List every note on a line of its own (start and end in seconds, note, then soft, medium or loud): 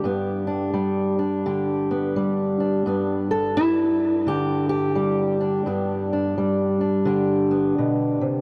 0.00 2.85 G2 medium
0.00 0.73 G3 medium
0.00 0.47 D4 soft
0.00 1.19 G4 medium
0.05 1.90 B3 soft
0.47 1.18 D4 soft
0.74 2.16 G3 medium
1.19 2.60 D4 soft
1.46 2.86 D3 medium
1.46 4.27 G4 soft
1.91 2.87 B3 soft
2.16 3.56 G3 medium
2.60 3.30 D4 soft
2.86 5.65 G2 medium
2.86 5.66 B3 soft
3.31 3.57 A4 medium
3.57 4.27 E4 loud
4.27 5.67 D3 medium
4.27 4.68 G4 medium
4.69 6.80 G4 medium
4.95 6.36 G3 medium
5.41 6.12 D4 soft
5.66 7.76 G2 medium
5.66 7.50 B3 soft
6.13 6.80 D4 medium
6.38 8.41 G3 medium
6.81 8.41 D4 soft
7.05 8.41 D3 medium
7.05 8.41 G4 medium
7.51 8.41 B3 soft
7.78 8.21 B2 medium
8.21 8.41 C3 medium